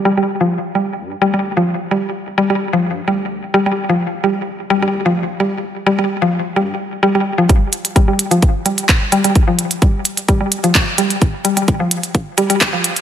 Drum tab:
HH |----------------|----------------|----------------|----------------|
CP |----------------|----------------|----------------|----------------|
BD |----------------|----------------|----------------|----------------|

HH |x-xxx-xxx-xxx-xx|x-xxx-xxx-xxx-xx|x-xxx-xxx-xxx-xx|
CP |------------x---|------------x---|------------x---|
BD |o---o---o---o---|o---o---o---o---|o---o---o---o---|